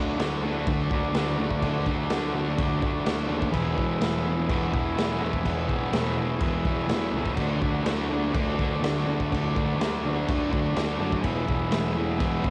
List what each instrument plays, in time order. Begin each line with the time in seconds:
Already playing: picked electric bass D2, distorted electric guitar D3 A3 D4, transistor combo organ F#4 A4 D5
0.17 picked electric bass D2, distorted electric guitar D3 A3 D4, snare, crash
0.44 distorted electric guitar D3 A3 D4
0.67 picked electric bass D2, distorted electric guitar D3 A3 D4, kick, crash
0.91 picked electric bass D2, distorted electric guitar D3 A3 D4, kick
1.12 picked electric bass D2, distorted electric guitar D3 A3, snare, crash
1.17 distorted electric guitar D4
1.38 picked electric bass D2, distorted electric guitar D3 A3 D4
1.51 kick
1.62 picked electric bass D2, distorted electric guitar D3 A3 D4, kick, crash
1.86 picked electric bass D2, distorted electric guitar D3 A3 D4, kick
2.10 picked electric bass D2, distorted electric guitar D3 A3 D4, snare, crash
2.34 distorted electric guitar D3 A3 D4
2.57 picked electric bass D2, distorted electric guitar D3 A3 D4, kick, crash
2.82 picked electric bass D2, distorted electric guitar D3 A3 D4, kick
3.05 picked electric bass D2, distorted electric guitar D3 A3 D4, snare, crash
3.27 picked electric bass D#2, distorted electric guitar D3 A3 D4
3.42 kick
3.50 picked electric bass E1, distorted electric guitar E2 B2 E3, transistor combo organ G#4 B4 E5, kick, crash
3.73 picked electric bass E1, distorted electric guitar E2 B2 E3
3.78 kick
4.00 picked electric bass E1, distorted electric guitar E2 B2 E3, snare, crash
4.26 distorted electric guitar E2 B2 E3
4.49 picked electric bass E1, distorted electric guitar E2 B2 E3, kick, crash
4.71 picked electric bass E1, distorted electric guitar E2 B2 E3, kick
4.97 picked electric bass E1, distorted electric guitar E2 B2 E3, snare, crash
5.22 picked electric bass E1, distorted electric guitar E2 B2 E3
5.33 kick
5.44 picked electric bass E1, distorted electric guitar E2 B2 E3, kick, crash
5.68 picked electric bass E1, distorted electric guitar E2 B2 E3, kick
5.92 picked electric bass E1, distorted electric guitar E2 B2 E3, snare, crash
6.19 distorted electric guitar E2 B2 E3
6.41 picked electric bass E1, distorted electric guitar E2 B2 E3, kick, crash
6.65 picked electric bass E1, distorted electric guitar E2 B2 E3, kick
6.88 picked electric bass E1, snare, crash
6.93 distorted electric guitar E2 B2 E3
7.12 picked electric bass C#2, distorted electric guitar B2
7.16 distorted electric guitar E2 E3
7.26 kick
7.36 picked electric bass D2, distorted electric guitar D3 A3 D4, transistor combo organ F#4 A4 D5, kick, crash
7.61 picked electric bass D2, distorted electric guitar D3 A3 D4, kick
7.83 picked electric bass D2, distorted electric guitar D3 A3 D4, snare, crash
8.10 distorted electric guitar D3 A3 D4
8.33 picked electric bass D2, distorted electric guitar D3 A3 D4, kick, crash
8.59 picked electric bass D2, distorted electric guitar D3 A3 D4, kick
8.81 picked electric bass D2, distorted electric guitar D3 A3 D4, snare, crash
9.06 picked electric bass D2, distorted electric guitar D3 A3 D4
9.20 kick
9.32 picked electric bass D2, distorted electric guitar D3 A3 D4, kick, crash
9.55 picked electric bass D2, distorted electric guitar D3 A3 D4, kick
9.76 picked electric bass D2, distorted electric guitar D3
9.81 distorted electric guitar A3 D4, snare, crash
10.04 distorted electric guitar D3 A3 D4
10.28 picked electric bass D2, distorted electric guitar D3 A3 D4, kick, crash
10.49 picked electric bass D2, distorted electric guitar D3 A3 D4, kick
10.75 picked electric bass D2, distorted electric guitar D3 A3 D4, snare, crash
10.99 picked electric bass F#2, distorted electric guitar D3 A3 D4
11.12 kick
11.21 picked electric bass E1, distorted electric guitar E2 B2 E3, transistor combo organ G#4 B4, kick, crash
11.26 transistor combo organ E5
11.46 picked electric bass E1, distorted electric guitar E2 B2 E3, kick
11.70 picked electric bass E1, distorted electric guitar E2 B2 E3, snare, crash
11.95 distorted electric guitar E2 B2 E3
12.18 picked electric bass E1, distorted electric guitar E2 B2 E3, kick, crash
12.42 picked electric bass E1, distorted electric guitar E2 B2 E3, kick